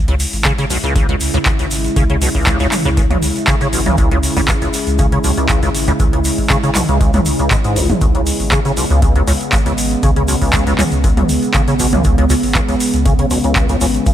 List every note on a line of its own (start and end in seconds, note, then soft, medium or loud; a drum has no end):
0.00 0.25 C#2 loud
0.00 14.14 C#3 medium
0.00 14.14 G#3 medium
0.00 8.00 E4 medium
0.08 0.15 C#2 medium
0.08 closed hi-hat medium
0.20 open hi-hat loud
0.20 shaker medium
0.33 0.63 G#1 medium
0.33 open hi-hat medium
0.33 shaker soft
0.45 0.52 C#3 medium
0.45 kick loud
0.45 clap loud
0.45 closed hi-hat medium
0.45 shaker soft
0.58 0.65 C#3 medium
0.58 closed hi-hat medium
0.58 shaker soft
0.70 0.78 B1 medium
0.70 open hi-hat loud
0.70 shaker medium
0.84 0.93 C#2 medium
0.84 1.13 C#2 loud
0.84 closed hi-hat soft
0.84 shaker soft
0.96 1.07 C#2 medium
0.96 kick loud
0.96 closed hi-hat medium
0.96 shaker soft
1.09 1.15 C#2 loud
1.09 closed hi-hat medium
1.20 1.29 C#2 medium
1.20 open hi-hat loud
1.20 shaker loud
1.34 1.38 C#2 loud
1.34 closed hi-hat soft
1.34 shaker soft
1.46 1.50 C#2 medium
1.46 kick loud
1.46 clap loud
1.46 closed hi-hat medium
1.46 shaker soft
1.59 1.89 G#1 loud
1.59 1.66 C#2 medium
1.59 closed hi-hat medium
1.59 shaker soft
1.71 open hi-hat medium
1.71 shaker medium
1.84 closed hi-hat soft
1.84 shaker soft
1.96 2.27 C#2 loud
1.96 2.04 C#3 medium
1.96 kick loud
1.96 closed hi-hat medium
1.96 shaker medium
2.10 2.16 C#3 medium
2.10 closed hi-hat medium
2.22 2.29 B1 medium
2.22 open hi-hat loud
2.22 shaker loud
2.35 2.65 G#1 medium
2.35 2.45 C#2 medium
2.35 kick medium
2.35 open hi-hat medium
2.35 shaker soft
2.46 2.58 C#2 medium
2.46 kick loud
2.46 clap loud
2.46 closed hi-hat medium
2.46 shaker medium
2.60 2.67 C#2 loud
2.60 closed hi-hat medium
2.60 shaker soft
2.72 clap medium
2.72 mid tom medium
2.72 open hi-hat loud
2.72 shaker medium
2.85 2.89 C#2 loud
2.85 3.15 C#2 medium
2.85 closed hi-hat soft
2.85 shaker soft
2.97 3.02 C#2 medium
2.97 kick loud
2.97 closed hi-hat medium
2.97 shaker medium
3.11 3.17 C#2 medium
3.11 closed hi-hat medium
3.11 mid tom medium
3.22 3.31 C#2 medium
3.22 open hi-hat loud
3.22 shaker medium
3.36 closed hi-hat soft
3.36 shaker soft
3.47 3.55 C#3 medium
3.47 kick loud
3.47 clap loud
3.47 closed hi-hat medium
3.47 shaker medium
3.61 3.91 G#1 loud
3.61 3.68 C#3 medium
3.61 closed hi-hat soft
3.61 shaker soft
3.73 3.80 B1 medium
3.73 open hi-hat loud
3.73 shaker medium
3.86 3.96 C#2 medium
3.86 closed hi-hat soft
3.86 mid tom medium
3.86 shaker soft
3.98 4.09 C#2 medium
3.98 4.28 C#2 medium
3.98 kick loud
3.98 closed hi-hat medium
3.98 shaker medium
4.11 4.18 C#2 medium
4.11 closed hi-hat medium
4.23 open hi-hat loud
4.23 shaker medium
4.36 4.66 G#1 medium
4.36 4.41 C#2 loud
4.36 open hi-hat medium
4.36 shaker soft
4.48 4.53 C#2 medium
4.48 kick loud
4.48 clap loud
4.48 closed hi-hat medium
4.48 shaker medium
4.62 4.68 C#2 medium
4.62 closed hi-hat medium
4.62 shaker soft
4.74 open hi-hat loud
4.74 shaker medium
4.87 5.17 C#2 loud
4.87 closed hi-hat soft
4.87 shaker soft
4.99 5.06 C#3 medium
4.99 kick loud
4.99 closed hi-hat medium
4.99 shaker medium
5.12 5.19 C#3 medium
5.12 closed hi-hat soft
5.24 5.31 B1 medium
5.24 5.32 C#2 medium
5.24 open hi-hat loud
5.24 shaker medium
5.37 5.47 C#2 medium
5.37 closed hi-hat soft
5.37 shaker soft
5.49 5.60 C#2 medium
5.49 kick loud
5.49 clap loud
5.49 closed hi-hat medium
5.49 shaker medium
5.63 5.92 G#1 loud
5.63 5.69 C#2 medium
5.63 closed hi-hat soft
5.63 shaker soft
5.75 open hi-hat loud
5.75 shaker medium
5.87 5.92 C#2 loud
5.87 closed hi-hat soft
5.87 shaker soft
6.00 6.04 C#2 medium
6.00 6.30 C#2 medium
6.00 kick loud
6.00 closed hi-hat medium
6.00 shaker medium
6.13 6.20 C#2 medium
6.13 closed hi-hat soft
6.25 open hi-hat loud
6.25 shaker medium
6.38 6.68 G#1 medium
6.38 kick medium
6.38 open hi-hat medium
6.38 shaker soft
6.50 6.58 C#3 medium
6.50 kick loud
6.50 clap loud
6.50 closed hi-hat medium
6.50 shaker medium
6.64 6.70 C#3 medium
6.64 closed hi-hat soft
6.64 shaker soft
6.75 6.83 B1 medium
6.75 clap medium
6.75 mid tom medium
6.75 open hi-hat loud
6.75 shaker loud
6.88 7.19 C#2 loud
6.88 6.99 C#2 medium
6.88 closed hi-hat soft
6.88 shaker soft
7.01 7.12 C#2 medium
7.01 kick loud
7.01 closed hi-hat medium
7.01 shaker soft
7.13 7.20 C#2 loud
7.13 closed hi-hat soft
7.13 mid tom medium
7.13 shaker soft
7.26 7.34 C#2 medium
7.26 open hi-hat loud
7.26 shaker medium
7.39 7.49 C#2 medium
7.39 closed hi-hat soft
7.39 shaker soft
7.51 7.55 G#2 medium
7.51 kick loud
7.51 clap loud
7.51 closed hi-hat medium
7.51 shaker medium
7.64 7.94 G#1 medium
7.64 7.78 G#2 medium
7.64 closed hi-hat soft
7.64 shaker soft
7.76 7.91 C#2 medium
7.76 open hi-hat loud
7.76 shaker loud
7.90 7.93 C#3 medium
7.90 closed hi-hat soft
7.90 mid tom medium
7.90 shaker soft
8.01 8.06 C#2 medium
8.01 8.32 C#2 loud
8.01 14.14 B3 medium
8.01 kick loud
8.01 closed hi-hat medium
8.01 shaker soft
8.15 8.21 C#2 medium
8.15 closed hi-hat medium
8.27 open hi-hat loud
8.27 shaker medium
8.40 8.70 G#1 medium
8.40 open hi-hat medium
8.40 shaker soft
8.52 8.59 C#3 medium
8.52 kick loud
8.52 clap loud
8.52 closed hi-hat medium
8.52 shaker medium
8.65 8.72 C#3 medium
8.65 closed hi-hat soft
8.65 shaker soft
8.77 8.84 B1 medium
8.77 open hi-hat loud
8.77 shaker medium
8.90 9.20 C#2 loud
8.90 9.00 C#2 medium
8.90 closed hi-hat soft
8.90 shaker soft
9.02 9.13 C#2 medium
9.02 kick loud
9.02 closed hi-hat medium
9.02 shaker soft
9.16 9.22 C#2 loud
9.16 closed hi-hat soft
9.27 9.32 C#2 loud
9.27 9.36 C#2 medium
9.27 open hi-hat loud
9.27 shaker medium
9.41 closed hi-hat soft
9.41 shaker soft
9.52 9.57 C#2 medium
9.52 kick loud
9.52 clap loud
9.52 closed hi-hat medium
9.52 shaker medium
9.66 9.96 G#1 loud
9.66 9.73 C#2 medium
9.66 closed hi-hat soft
9.66 shaker soft
9.78 open hi-hat loud
9.78 shaker medium
9.91 closed hi-hat soft
9.91 shaker soft
10.03 10.33 C#2 medium
10.03 10.10 C#3 medium
10.03 kick loud
10.03 closed hi-hat medium
10.03 shaker soft
10.16 10.23 C#3 medium
10.16 closed hi-hat medium
10.28 10.36 B1 medium
10.28 open hi-hat loud
10.28 shaker medium
10.42 10.71 G#1 medium
10.42 10.51 C#2 medium
10.42 kick medium
10.42 open hi-hat medium
10.42 shaker soft
10.53 10.65 C#2 medium
10.53 kick loud
10.53 clap loud
10.53 closed hi-hat medium
10.53 shaker medium
10.67 10.73 C#2 loud
10.67 closed hi-hat medium
10.67 shaker soft
10.78 10.83 C#2 loud
10.78 clap medium
10.78 mid tom medium
10.78 open hi-hat loud
10.78 shaker medium
10.92 11.22 C#2 loud
10.92 closed hi-hat soft
10.92 shaker soft
11.04 11.08 C#2 medium
11.04 kick loud
11.04 closed hi-hat medium
11.04 shaker medium
11.17 11.24 C#2 medium
11.17 closed hi-hat medium
11.17 mid tom medium
11.29 11.37 C#2 medium
11.29 open hi-hat loud
11.29 shaker medium
11.42 closed hi-hat soft
11.42 shaker soft
11.54 11.62 C#3 medium
11.54 kick loud
11.54 clap loud
11.54 closed hi-hat medium
11.54 shaker medium
11.68 11.97 G#1 loud
11.68 11.74 C#3 medium
11.68 closed hi-hat medium
11.68 shaker soft
11.79 11.87 B1 medium
11.79 open hi-hat loud
11.79 shaker medium
11.93 12.03 C#2 medium
11.93 closed hi-hat soft
11.93 mid tom loud
11.93 shaker soft
12.04 12.16 C#2 medium
12.04 12.35 C#2 medium
12.04 kick loud
12.04 closed hi-hat medium
12.04 shaker soft
12.18 12.25 C#2 loud
12.18 closed hi-hat medium
12.30 12.34 C#2 loud
12.30 open hi-hat loud
12.30 shaker medium
12.43 12.73 G#1 medium
12.43 open hi-hat medium
12.43 shaker soft
12.55 12.60 C#2 medium
12.55 kick loud
12.55 clap loud
12.55 closed hi-hat medium
12.55 shaker soft
12.68 12.75 C#2 medium
12.68 closed hi-hat medium
12.68 shaker soft
12.80 open hi-hat loud
12.80 shaker medium
12.93 13.24 C#2 loud
12.93 closed hi-hat soft
12.93 shaker soft
13.06 13.13 C#3 medium
13.06 kick loud
13.06 closed hi-hat medium
13.06 shaker soft
13.19 13.25 C#3 medium
13.19 closed hi-hat medium
13.30 13.38 B1 medium
13.30 13.39 C#2 medium
13.30 open hi-hat loud
13.30 shaker medium
13.44 13.54 C#2 medium
13.44 closed hi-hat soft
13.44 shaker soft
13.56 kick loud
13.56 clap loud
13.56 closed hi-hat medium
13.56 shaker soft
13.69 13.99 G#1 medium
13.69 13.76 C#2 loud
13.69 closed hi-hat medium
13.69 shaker soft
13.81 13.86 C#2 loud
13.81 open hi-hat loud
13.81 shaker medium
13.94 closed hi-hat soft
13.94 shaker soft
14.06 14.11 C#2 medium
14.06 14.14 C#2 medium
14.06 kick loud
14.06 closed hi-hat medium
14.06 shaker medium